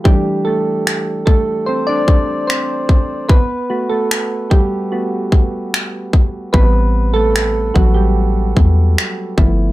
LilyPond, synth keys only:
\new Staff \with { instrumentName = "Synth keys" } { \time 4/4 \key a \dorian \tempo 4 = 74 << { <g g'>8 <a a'>4 <a a'>8 <c' c''>16 <d' d''>8. <c' c''>8. r16 | <b b'>8. <a a'>8. <g g'>4. r4 | <b b'>8. <a a'>8. <fis fis'>16 <g g'>4. r8. | } \\ { <e a d'>1 | r8 <a b fis'>4. <a b fis'>8 r4. | <g b c'>2.~ <g b c'>8 <f a b e'>8 | } >> }